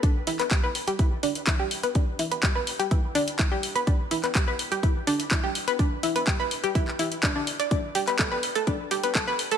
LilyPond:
<<
  \new Staff \with { instrumentName = "Synth arpeggio sound" } { \time 4/4 \key e \minor \tempo 4 = 125 d'16 r16 e'16 b'16 g'16 b'16 r16 g'16 e'16 r16 d'16 r16 e'16 g'16 r16 b'16 | d'16 r16 e'16 b'16 g'16 b'16 r16 g'16 e'16 r16 d'16 r16 e'16 g'16 r16 b'16 | d'16 r16 e'16 b'16 g'16 b'16 r16 g'16 e'16 r16 d'16 r16 e'16 g'16 r16 b'16 | d'16 r16 e'16 b'16 g'16 b'16 r16 g'16 e'16 r16 e'16 r16 d'16 d'16 r16 d''16 |
d'16 r16 g'16 b'16 a'16 b'16 r16 a'16 d'16 r16 g'16 b'16 a'16 b'16 r16 a'16 | }
  \new DrumStaff \with { instrumentName = "Drums" } \drummode { \time 4/4 <hh bd>8 hho16 <hc hh>16 <hc hh bd>8 hho16 hh16 <hh bd>8 hho16 hh16 <hc hh bd>8 hho16 hh16 | <hh bd>8 hho16 hh16 <hc hh bd>8 hho16 hh16 <hh bd>8 hho16 hh16 <hc hh bd>8 hho16 hh16 | <hh bd>8 hho16 <hc hh>16 <hc hh bd>8 hho16 hh16 <hh bd>8 hho16 hh16 <hc hh bd>8 hho16 hh16 | <hh bd>8 hho16 hh16 <hc hh bd>8 hho16 hh16 <hh bd>16 hc16 hho16 hh16 <hc hh bd>8 hho16 hh16 |
<hh bd>8 hho16 <hc hh>16 <hc hh bd>8 hho16 hh16 <hh bd>8 hho16 hh16 <hc hh bd>8 hho16 hh16 | }
>>